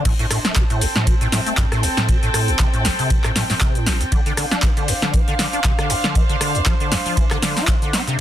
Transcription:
Already playing: D4 C5
0.05 A2 C4, kick, closed hi-hat, crash, ride, cabasa
0.19 A2, closed hi-hat, cabasa
0.31 A2, cross-stick, snare, open hi-hat, ride, cabasa
0.44 A3 A4, snare, closed hi-hat, cabasa
0.56 A2, kick, snare, clap, closed hi-hat, ride, cabasa
0.70 A2 G5, closed hi-hat, ride, cabasa
0.81 A1, open hi-hat, ride, cabasa
0.96 A2, snare, closed hi-hat, cabasa
1.07 B2, kick, closed hi-hat, ride, cabasa
1.21 A2, closed hi-hat, cabasa
1.32 A2, snare, open hi-hat, ride, cabasa
1.46 A3, closed hi-hat, cabasa
1.58 G2, kick, snare, clap, closed hi-hat, ride, cabasa
1.72 A2, cross-stick, snare, closed hi-hat, cabasa
1.83 A1, open hi-hat, ride, cabasa
1.97 A2, snare, closed hi-hat, ride, cabasa
2.09 B2, kick, closed hi-hat, ride, cabasa
2.23 A2, closed hi-hat, cabasa
2.34 A2, cross-stick, open hi-hat, ride, cabasa
2.48 A1, closed hi-hat, cabasa
2.59 C3, kick, snare, clap, closed hi-hat, ride, cabasa
2.74 A2, closed hi-hat, cabasa
2.85 A1, snare, open hi-hat, ride, cabasa
2.99 C3, open hi-hat, cabasa
3.10 B2, kick, closed hi-hat, ride, cabasa
3.24 A2, cross-stick, clap, closed hi-hat, cabasa
3.36 A2, snare, open hi-hat, ride, cabasa
3.50 A2, snare, open hi-hat, cabasa
3.61 C3, kick, snare, clap, closed hi-hat, ride, cabasa
3.75 A2, closed hi-hat, cabasa
3.86 A1, snare, open hi-hat, ride, cabasa
4.01 A2, snare, closed hi-hat, cabasa
4.12 D3 D4, kick, closed hi-hat, ride, cabasa
4.26 D3, closed hi-hat, cabasa
4.37 D3, cross-stick, snare, open hi-hat, ride, cabasa
4.44 F5
4.51 D4 C5, snare, closed hi-hat, cabasa
4.63 D3, kick, snare, clap, closed hi-hat, ride, cabasa
4.77 D3, closed hi-hat, ride, cabasa
4.88 D2, open hi-hat, ride, cabasa
5.02 D3, snare, closed hi-hat, cabasa
5.14 E3, kick, closed hi-hat, ride, cabasa
5.28 D3, closed hi-hat, cabasa
5.39 D3, snare, open hi-hat, ride, cabasa
5.53 D4, closed hi-hat, cabasa
5.64 C3, kick, snare, clap, closed hi-hat, ride, cabasa
5.79 D3, cross-stick, snare, closed hi-hat, cabasa
5.90 D2, open hi-hat, ride, cabasa
6.04 D3, snare, closed hi-hat, ride, cabasa
6.15 E3, kick, closed hi-hat, ride, cabasa
6.29 D3, closed hi-hat, cabasa
6.41 D3, cross-stick, open hi-hat, ride, cabasa
6.55 D2, closed hi-hat, cabasa
6.66 F3, kick, snare, clap, closed hi-hat, ride, cabasa
6.80 D3, closed hi-hat, cabasa
6.92 D2, snare, open hi-hat, ride, cabasa
7.06 F3, open hi-hat, cabasa
7.17 E3, kick, closed hi-hat, ride, cabasa
7.31 D3, cross-stick, clap, closed hi-hat, cabasa
7.42 D3, snare, open hi-hat, ride, cabasa
7.57 F4, snare, open hi-hat, cabasa
7.68 D3, kick, snare, clap, closed hi-hat, ride, cabasa
7.82 D3, closed hi-hat, cabasa
7.93 C4, snare, open hi-hat, ride, cabasa
8.07 C3, snare, closed hi-hat, cabasa

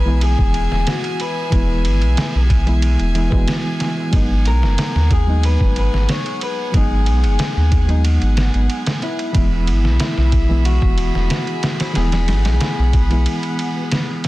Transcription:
Already playing: B1 E3 G#3 B3 E4 G#4 B4 E5 G#5
0.05 E3 G#3 B3 E4
0.21 G#4, ride
0.39 E1, kick
0.54 ride
0.72 E1, snare
0.87 F#4, snare, ride
1.04 ride
1.20 B4, ride
1.50 E1 E3 G#3 B3, kick, ride
1.55 E4
1.85 G#1, ride
2.02 B1, ride
2.17 snare, ride
2.35 B1
2.50 kick, ride
2.66 E3 G#3 B3 E4, ride
2.82 ride
3.00 E1, ride
3.15 E3 G#3 B3 E4, ride
3.30 E1 E3 G#3 B3, kick
3.36 F#4
3.48 snare, ride
3.80 snare, ride
4.11 G#1 F#3 G#3 B3 G#4 F#5, kick, ride
4.16 D#4
4.45 B1 A#4, ride
4.63 F#1, snare
4.78 snare, ride
4.95 D#2, snare
5.11 G#4, kick, ride
5.27 F#3 G#3 B3 D#4
5.43 B4, ride
5.60 G#1, kick
5.76 B4, ride
5.94 G#1, snare
6.09 C#5, snare, ride
6.26 ride
6.41 B4, ride
6.72 G#1 F#3 G#3 B3, kick, ride
6.76 D#4 G#4
7.06 B1, ride
7.24 F#1, ride
7.39 snare, ride
7.57 D#2
7.72 kick, ride
7.88 F#3 G#3 B3 D#4, ride
8.05 ride
8.22 G#1, ride
8.37 snare, ride
8.54 G#1, ride
8.70 ride
8.86 snare, ride
9.02 E4, ride
9.19 ride
9.33 E1 E3 G#3 B3 G#4 E5 B5, kick, ride
9.38 E4
9.67 G#1, ride
9.85 B1, snare
10.00 E4, snare, ride
10.17 B1, snare
10.32 kick, ride
10.49 E3 G#3 B3 E4
10.65 F#4, ride
10.82 E1, kick
10.98 ride
11.15 E1, snare
11.30 snare, ride
11.47 ride
11.63 snare, ride
11.80 snare, ride
11.93 E1 E3 G#3 B3 G#4 F#5, snare, ride
11.99 E4
12.12 snare, ride
12.28 G#1, snare, ride
12.45 B1, snare, ride
12.61 snare, ride
12.79 B1
12.93 kick, ride
13.10 E3 G#3 B3 E4, ride
13.26 ride
13.43 ride
13.59 ride
13.92 snare, ride
14.24 snare, ride

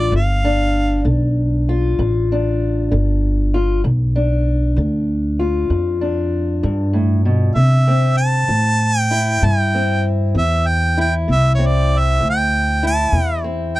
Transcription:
Already playing: D4 F4 D5
0.12 G1 G2 F5
0.45 D4
1.05 B1 D3
1.69 F4
1.99 A1 G2
2.32 D4
2.91 G1 D3
3.54 F4
3.84 B1 G2
4.16 D4
4.76 D2 D3
5.39 F4
5.70 F2 G2
6.01 D4
6.63 G2
6.93 A2
7.25 B2
7.55 C3 E5
7.88 C4
8.17 A5
8.48 A2 E3
8.99 G5
9.11 E4
9.42 G2 C3 G5
9.75 C4
10.35 E2 E3 E5
10.66 G5
10.97 E4 G5
11.28 C2 C3
11.32 E5
11.54 C#5
11.59 C4
11.66 D5
11.98 E5
12.20 D2 E3
12.29 G5
12.83 E4 A5
13.12 E2 C3
13.44 C4
13.76 G5

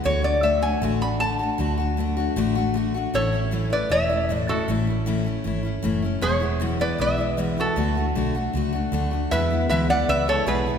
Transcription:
0.04 D2 D3 A3 D4 F#4 C#5
0.22 A3 D4 F#4 D5
0.43 D3 A3 D4 F#4 E5
0.62 A3 D4 F#4 G#5
0.81 A1 D3 A3 D4 F#4
1.01 A3 D4 F#4 B5
1.20 D3 A3 D4 F#4 A5
1.39 A3 D4 F#4
1.58 D2 D3 A3 D4 F#4
1.78 A3 D4 F#4
1.97 D3 A3 D4 F#4
2.17 A3 D4 F#4
2.36 A1 D3 A3 D4 F#4
2.55 A3 D4 F#4
2.74 D3 A3 D4 F#4
2.94 A3 D4 F#4
3.14 A1 A2 E3 A3 C#4 E4 A4 C#5
3.32 A3 C#4 E4
3.51 A2 E3 A3 C#4 E4
3.70 A3 C#4 E4 B4 D5
3.90 E1 E3 A3 C#4 E4 C#5 E5
4.10 A3 C#4 E4
4.29 A2 E3 A3 C#4 E4
4.37 D5
4.48 A3 C#4 E4 F#4 A4
4.68 A1 A2 E3 A3 C#4 E4
4.87 A3 C#4 E4
5.06 A2 E3 A3 C#4 E4
5.24 A3 C#4 E4
5.44 G#1 E3 A3 C#4 E4
5.63 A3 C#4 E4
5.83 F#1 A2 E3 A3 C#4 E4
6.02 A3 C#4 E4
6.21 E1 E2 B2 E3 G#3 B3 E4 G#4 C#5
6.40 E3 G#3 B3 E4
6.60 E2 B2 E3 G#3 B3 E4
6.80 E3 G#3 B3 E4 B4 D5
6.98 B1 E3 G#3 B3 E4 B4 E5
7.18 E3 G#3 B3 E4
7.37 E2 B2 E3 G#3 B3 E4
7.57 E3 G#3 B3 E4 F#4 A4
7.76 D2 D3 A3 D4 F#4
7.95 A3 D4 F#4
8.15 B1 D3 A3 D4 F#4
8.35 A3 D4 F#4
8.53 C#2 D3 A3 D4 F#4
8.73 A3 D4 F#4
8.92 D2 D3 A3 D4 F#4
9.11 A3 D4 F#4
9.31 E2 B2 E3 G#3 B3 E4 B4 E5
9.50 E3 G#3 B3 E4
9.69 D2 E2 B2 E3 G#3 B3 E4 B4 E5
9.90 E3 B3 E4 D5 F#5
10.08 C#2 E3 G#3 B3 B4 E5
10.12 E4
10.28 E3 G#3 B3 E4 A4 C#5
10.46 B1 E2 B2 E3 G#3 B3 E4 G#4 B4
10.66 E3 G#3 B3 E4

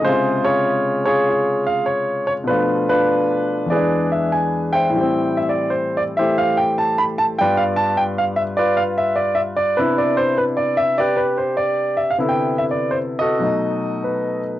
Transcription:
0.01 C#3 G#3 F4 G#4 C5
0.08 C3 F4
0.44 F4 G#4 C#5
1.05 F4 G#4 C#5
1.28 F4
1.66 F5
1.86 C#5
2.27 C#5
2.44 B2 F3 B4
2.49 A3 D4 F4
2.54 D4
2.89 D4 F4 B4
3.66 E2 E3
3.70 G#3 G#4 B4 D5
3.77 D4
4.12 E5
4.32 G#5
4.73 C5 E5 G5
4.90 A2
4.94 E3 G3
5.01 C4
5.37 E5
5.49 D5
5.70 C5
5.97 D5
6.17 E3 A3 G4 C5 E5
6.38 F5
6.57 G5
6.78 A5
6.98 B5
7.18 A5
7.39 G2 G3 B3 F4 B4 D5 G5
7.57 F5
7.76 A5
7.97 G5
8.18 F5
8.36 E5
8.57 F4 B4 D5
8.77 F5
8.98 E5
9.16 D5
9.35 E5
9.57 D5
9.77 C3 B3 D4 E4 B4
9.98 D5
10.17 C5
10.38 B4
10.57 D5
10.77 E5
10.98 G4 B4 D5
11.17 B4
11.38 C5
11.57 D5
11.97 E5
12.10 F5
12.18 C3 D3 B3 E4
12.29 G5
12.58 E5
12.71 D5
12.91 C5
13.19 F#4 A4 D#5
13.39 B2 F#3 A3
13.43 D#4
14.04 B4

